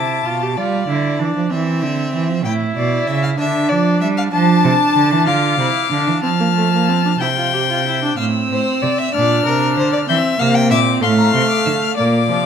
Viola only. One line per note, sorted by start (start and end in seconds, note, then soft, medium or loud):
0.00 0.27 E4 medium
0.25 0.43 F4 medium
0.42 0.57 G4 medium
0.57 0.88 F4 medium
0.88 1.21 E4 medium
1.19 1.52 D4 medium
1.50 2.44 C4 medium
2.44 3.37 E4 medium
3.39 4.30 D4 medium
4.32 5.28 D4 medium
5.26 5.59 F4 medium
5.59 5.90 E4 medium
5.91 6.22 D4 medium
6.23 6.29 C4 medium
6.40 6.46 A#3 medium
6.56 6.72 A3 medium
6.73 6.90 A#3 medium
6.89 7.04 C4 medium
7.04 7.11 D4 medium
7.21 7.27 E4 medium
7.37 7.53 F4 medium
7.53 7.60 G4 medium
7.70 7.85 F4 medium
7.86 8.02 E4 medium
8.02 8.18 D4 medium
8.18 9.10 C4 medium
9.14 10.06 D4 medium
10.08 10.39 C4 medium
10.39 10.72 A#3 medium
10.70 11.03 C4 medium
11.02 11.97 A3 medium
11.97 12.27 A#3 medium
12.29 12.46 F3 medium